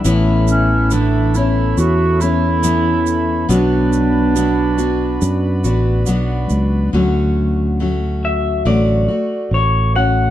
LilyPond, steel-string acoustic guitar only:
\new Staff \with { instrumentName = "Steel-string acoustic guitar" } { \time 4/4 \key d \major \tempo 4 = 70 <a, e b cis' e'>4 <e b e'>8 <b cis' e'>4 <b cis' e'>8 <e b cis' e'>4 | <b, fis b d' fis'>4 <fis b d' fis'>8 <b d' fis'>4 <b d' fis'>8 <fis b d' fis'>4 | <d fis a cis' fis'>4 <fis a cis' fis'>4 <d fis a fis'>8 <a fis'>4 <a cis' fis'>8 | }